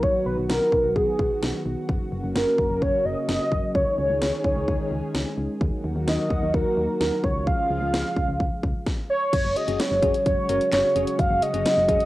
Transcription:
Already playing: B1 D#3 F#3 B3 F#4
0.03 C#5, kick
0.26 B1 B4
0.38 B1
0.49 B1 A#4, snare
0.72 B1, kick
0.84 B1
0.96 B1 G#4, kick
1.19 B1, kick
1.42 B1, snare
1.66 B1
1.89 F#1 C#3 F#3 A#3, kick
2.12 F#1
2.24 F#1
2.35 F#1 A#4, snare
2.58 F#1, kick
2.70 F#1
2.82 F#1 C#5, kick
3.05 F#1 D#5
3.28 F#1 D#5, snare
3.52 F#1, kick
3.75 C#2 D#3 G#3 C#4 G#4 C#5, kick
3.98 C#2
4.10 C#2
4.21 C#2, snare
4.44 C#2 C#5, kick
4.56 C#2
4.68 C#2, kick
4.91 C#2
5.14 C#2, snare
5.38 C#2
5.61 D#2 D#3 F#3 A#3 F#4, kick
5.84 D#2
5.96 D#2
6.07 D#2 D#5, snare
6.30 D#2, kick
6.42 D#2
6.54 D#2 A#4, kick
6.77 D#2
7.00 D#2 A#4, snare
7.24 C#2 C#3 F3 G#3 F4 C#5, kick
7.47 F5, kick
7.70 C#2
7.82 C#2
7.93 C#2, snare
8.16 C#2, kick
8.28 C#2
8.40 C#2, kick
8.63 C#2, kick
8.87 kick, snare
9.10 C#5
9.33 F#1 C#3 F#3 G#3 F#4, kick, closed hi-hat, crash
9.45 F#1
9.56 F#4 G#4 D#5, closed hi-hat
9.68 F#1 C#4 F#4 G#4, closed hi-hat
9.80 C#5, snare, closed hi-hat
9.91 F#1
10.02 F#1 C#4 F#4 G#4, kick, closed hi-hat
10.14 closed hi-hat
10.26 F#1 C#5, kick, closed hi-hat
10.49 F#1 C#4 F#4 A#4, closed hi-hat
10.61 closed hi-hat
10.72 F#1 C#5, snare, clap, closed hi-hat
10.96 F1 C#4 F#4 G#4, closed hi-hat
11.07 closed hi-hat
11.19 F#1 F5, kick, closed hi-hat
11.31 F#1
11.42 F#4 G#4 D#5, closed hi-hat
11.54 F#1 C#4 F#4 G#4, closed hi-hat
11.66 snare, closed hi-hat
11.77 F#1
11.89 F#1 C#4 F#4 G#4 D#5, kick, closed hi-hat
12.00 closed hi-hat

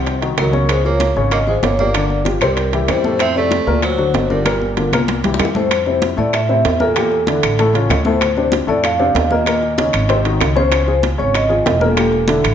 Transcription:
Already playing: C2 C3 C4 C5
0.06 high bongo, high conga, high timbale
0.21 D#3 D#4 F#4, high bongo, high conga, high timbale
0.37 C#2 D#3 F#3 D#4 F#4 A#4, high bongo, low bongo, high conga, high timbale, low timbale, claves
0.53 C#3 C#4 C#5, high bongo, high conga
0.69 G#3 C5, high bongo, high conga, high timbale, claves
0.84 F3 A#3 F4 G#4 C#5, high bongo, high conga
1.00 high bongo, high conga, high timbale, low timbale
1.16 G#1 C#3 C#4 C#5, high conga
1.31 A#3 D#5, high bongo, high conga, high timbale, claves
1.47 F3 G#3 F4 G#4 C5, high bongo, high conga
1.63 G1 A#3 C#5, high bongo, low bongo, high conga, high timbale, low timbale
1.78 F3 A#3 F4 G4 D5, high bongo, high conga
1.94 D3 D4 D5, high bongo, high conga, high timbale, claves
2.10 high bongo, high conga
2.25 F3 F4 G4, high bongo, high conga, high timbale, low timbale
2.41 C2 C3 G3 C4 A#4 C5, high conga, high timbale, claves
2.57 high bongo, high conga, high timbale
2.72 E3 E4 G4, high bongo, high conga, high timbale
2.88 F2 E3 G3 E4 G4 C5, high bongo, low bongo, high conga, high timbale, low timbale, claves
3.04 A2 A3 A4, high bongo, high conga
3.19 C4 E5, high bongo, high conga, high timbale, claves
3.35 C3 A3 C4 E4 D5, high bongo, high conga
3.51 high bongo, high conga, high timbale, low timbale
3.67 D2 A#2 A#3 A#4, high conga
3.82 F#3 C5, high bongo, high conga, high timbale, claves
3.98 D3 D4 F#4, high bongo, high conga
4.14 G1, high bongo, low bongo, high conga, high timbale, low timbale
4.29 D3 G3 D4 F4 A#4, high bongo, high conga
4.45 A#2 A#3 A#4, high bongo, high conga, high timbale, claves
4.62 high bongo, high conga
4.77 D3 D4 F4, high bongo, high conga, high timbale, low timbale
4.92 C2 A#2 A#3 A#4, high conga, high timbale, claves
5.08 high bongo, low conga, high timbale
5.24 E3 E4 G4, high bongo, low conga, high timbale
5.34 high bongo
5.39 F2 E3 E4 G4, low conga, high timbale, low timbale, claves
5.45 low bongo
5.55 A2 A3 A4 C5, low bongo, low conga
5.71 high bongo, high conga, high timbale, claves
5.86 C3 C4 E4, high bongo, high conga
6.02 high bongo, high conga, high timbale, low timbale
6.17 A2 A3 A4 D5, high conga
6.33 E5, high bongo, high conga, high timbale, claves
6.49 C3 C4 E4, high bongo, high conga
6.65 E2, high bongo, low bongo, high conga, high timbale, low timbale
6.80 A#2 A#3 A4 A#4, high bongo, high conga
6.96 A#2 A#3 G4, high bongo, high conga, high timbale, claves
7.12 high bongo, high conga
7.27 D3 D4 E4, high bongo, high conga, high timbale, low timbale
7.43 A1, high conga, high timbale, claves
7.58 A2 A3 A4, high bongo, high conga, high timbale
7.74 C#3 C#4 F4, high bongo, high conga, high timbale
7.89 D2, high bongo, low bongo, high conga, high timbale, low timbale, claves
8.05 A2 A3 A4 C5, high bongo, high conga
8.21 high bongo, high conga, high timbale, claves
8.37 C3 C4 D4, high bongo, high conga
8.52 high bongo, high conga, high timbale, low timbale
8.67 F2 A2 A3 A4 D5, high conga
8.84 F5, high bongo, high conga, high timbale, claves
8.99 C3 C4 D4, high bongo, high conga
9.15 D#2, high bongo, low bongo, high conga, high timbale, low timbale
9.31 A#2 A#3 A#4 D#5, high bongo, high conga
9.46 A#2 A#3 A#4, high bongo, high conga, high timbale, claves
9.62 high bongo, high conga
9.78 C#3 C#4 D#4, high bongo, high conga, high timbale, low timbale
9.93 G#1, high conga, high timbale, claves
10.09 C3 C4 C5, high bongo, high conga, high timbale
10.25 D#3 D#4 F#4, high bongo, high conga, high timbale
10.41 C#2, high bongo, low bongo, high conga, high timbale, low timbale, claves
10.56 C#3 C#4 C5, high bongo, high conga
10.72 high bongo, high conga, high timbale, claves
10.87 F3 F4 G#4, high bongo, high conga
11.03 high bongo, high conga, high timbale, low timbale
11.18 G#1 C#3 C#4 C#5, high conga
11.34 D#5, high bongo, high conga, high timbale, claves
11.49 F3 F4 G#4, high bongo, high conga
11.66 E1, high bongo, low bongo, high conga, high timbale, low timbale
11.80 A#2 A#3 A4 A#4, high bongo, high conga
11.96 A#2 A#3 G4, high bongo, high conga, high timbale, claves
12.12 high bongo, high conga
12.28 D3 D4 E4, high bongo, high conga, high timbale, low timbale
12.43 A1, high conga, high timbale, claves

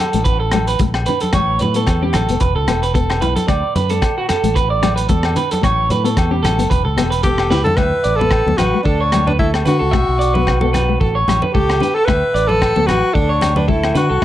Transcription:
Already playing: A4
0.00 low agogo
0.13 A1 A3, closed hi-hat
0.24 B4, kick, closed hi-hat
0.40 A4
0.52 A3, cross-stick, closed hi-hat, high conga, low agogo
0.67 B4, closed hi-hat
0.79 A#1 A3, kick, closed hi-hat
0.94 cross-stick, low agogo
1.06 D4 B4, closed hi-hat, low conga
1.20 A4, closed hi-hat, high conga
1.33 A1 A3 C#5, kick, cross-stick, closed hi-hat, low agogo
1.59 A2 B4, closed hi-hat, high conga, low conga
1.74 B3 A4, closed hi-hat
1.87 E2, kick, cross-stick, closed hi-hat, low agogo
2.02 C#4 G4
2.13 A1 A4, cross-stick, closed hi-hat, high conga, low conga, low agogo
2.28 F1 B3, closed hi-hat
2.40 E1 B4, kick, closed hi-hat
2.56 C#2 A4
2.67 E1 B3, cross-stick, closed hi-hat, high conga, low agogo
2.83 B4, closed hi-hat
2.94 B3 A4, kick, closed hi-hat
3.10 cross-stick, low agogo
3.21 B1 E4 B4, closed hi-hat, low conga
3.36 A4, closed hi-hat, high conga
3.48 D2 A3 D5, kick, cross-stick, closed hi-hat, low agogo
3.75 F#2 B4, closed hi-hat, high conga, low conga
3.89 A4, muted nylon-string guitar stroke, closed hi-hat
4.02 kick, cross-stick, closed hi-hat, low agogo
4.18 F#4
4.29 A4, cross-stick, closed hi-hat, high conga, low conga, low agogo
4.43 A1 A3, closed hi-hat
4.55 B4, kick, closed hi-hat
4.70 D5
4.82 A3, cross-stick, closed hi-hat, high conga, low agogo
4.96 B4, closed hi-hat
5.09 E2 A3 A4, kick, closed hi-hat
5.23 cross-stick, low agogo
5.35 D4 B4, closed hi-hat, low conga
5.51 A4, closed hi-hat, high conga
5.61 A1 A3 C#5, kick, cross-stick, closed hi-hat, low agogo
5.90 A2 B4, closed hi-hat, high conga, low conga
6.04 B3 A4, closed hi-hat
6.17 E2, kick, cross-stick, closed hi-hat, low agogo
6.31 C#4 G4
6.43 A1 A4, cross-stick, closed hi-hat, high conga, low conga, low agogo
6.58 F#1 B3, closed hi-hat, high conga
6.70 E1 B4, kick, closed hi-hat
6.85 C#2 A4
6.97 E1 B3, cross-stick, closed hi-hat, high conga, low conga, low agogo
7.10 B4, closed hi-hat
7.23 B3 G4 A4, kick, closed hi-hat
7.38 cross-stick, low agogo
7.50 C#2 E4 B4, snare, low conga
7.64 A4, muted clean electric guitar stroke, floor tom, high conga
7.76 D2 A3 B4 E5, kick, cross-stick, low agogo
8.04 A1 D5, closed hi-hat
8.16 A4 B4
8.20 B3, high conga
8.31 kick, cross-stick, low agogo
8.46 D2 B3, high conga
8.57 A1 F#4 B4, cross-stick, closed hi-hat, high conga, low conga, low agogo
8.74 A3
8.83 D2 D4 A4, kick
9.00 C#5
9.12 A3, cross-stick, closed hi-hat, high conga, low agogo
9.27 D4 B4, high conga, low conga
9.39 A3 E4 A4, kick
9.54 cross-stick, low agogo
9.65 D3 D4 F#4 B4, closed hi-hat, low conga
9.79 C#2 A4
9.91 B1 A3 E5, kick, cross-stick, low agogo
10.09 B1
10.19 D5, closed hi-hat
10.34 B3 B4, high conga
10.47 kick, cross-stick, low agogo
10.61 B3 A4, high conga
10.73 B4, cross-stick, closed hi-hat, high conga, low conga, low agogo
10.89 A3
11.00 A1 A4, kick
11.15 C#5
11.28 A1 A3, cross-stick, closed hi-hat, high conga, low agogo
11.42 B4, high conga, low conga
11.52 C#2 A3 G4 A4, kick
11.69 cross-stick, low agogo
11.80 D4 B4, closed hi-hat, low conga
11.94 A4
12.05 D2 A3 B4 E5, kick, cross-stick, low agogo
12.34 A1 D5, closed hi-hat
12.47 A4 B4, high conga
12.62 kick, cross-stick, low agogo
12.76 D2 B3 A4, high conga
12.87 A1 F#4 B4, cross-stick, closed hi-hat, high conga, low conga, low agogo
13.13 D2 D4 A4, kick
13.29 C#5
13.41 muted nylon-string guitar stroke, cross-stick, closed hi-hat, high conga, low agogo
13.56 D4 B4, high conga, low conga
13.68 A3 E4 A4, kick
13.84 cross-stick, low agogo
13.95 D3 D4 F#4 B4, closed hi-hat, low conga
14.10 C2 A4
14.22 A3

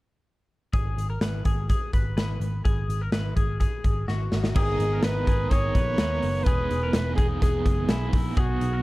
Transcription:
0.73 G#1 G#4, kick, closed hi-hat
0.97 G#1, closed hi-hat
1.10 A#4
1.21 G#1 B4, snare, closed hi-hat
1.45 G#1 G#4, kick, closed hi-hat
1.69 G#4, kick, closed hi-hat
1.93 G#1 B4, kick, closed hi-hat
2.16 G#1 B4, snare, closed hi-hat
2.40 G#1, closed hi-hat
2.65 G#1 G#4, kick, closed hi-hat
2.88 G#1, closed hi-hat
3.01 A#4
3.12 G#1 B4, snare, closed hi-hat
3.36 G#1 G#4, kick, closed hi-hat
3.60 G#4, kick, closed hi-hat
3.84 G#1, kick, closed hi-hat
4.08 G#1 F#4, snare
4.32 G#1, snare
4.44 snare
4.55 G#1 G#2 D#3 G#3 B3 D#4 G#4 A#4, kick, crash
4.79 G#1, closed hi-hat
4.93 A#4
5.03 G#1 G#3 B3 D#4 A#4 B4, snare, closed hi-hat
5.27 G#1 G#3 B3 D#4 G#4 A#4, kick, closed hi-hat
5.50 G#1 G#2 D#3 G#3 B3 D#4 G#4 A#4 C#5, kick, closed hi-hat
5.75 A#1 B4, kick, closed hi-hat
5.97 D#2 G#3 B3 D#4 A#4 B4, snare, closed hi-hat
6.22 F#1, open hi-hat
6.44 E1 E3 G#3 B3 G#4 B4, kick, closed hi-hat
6.48 D#4 G#4
6.71 E1, closed hi-hat
6.83 A#4
6.92 E1 G#3 B3 D#4 G#4 B4, snare, closed hi-hat
7.16 E1 D#4 G#4, kick, closed hi-hat
7.20 B3
7.40 E1 E3 G#3 B3 D#4 G#4, kick, closed hi-hat
7.65 F#1, kick, closed hi-hat
7.89 B1 G#3 B3 D#4 E4 G#4, snare, closed hi-hat
8.13 A#1 B3 D#4 G#4, kick, open hi-hat
8.37 B1 B2 F#3 B3 D#4 F#4 G#4, kick, closed hi-hat
8.61 B1, closed hi-hat
8.73 A#4

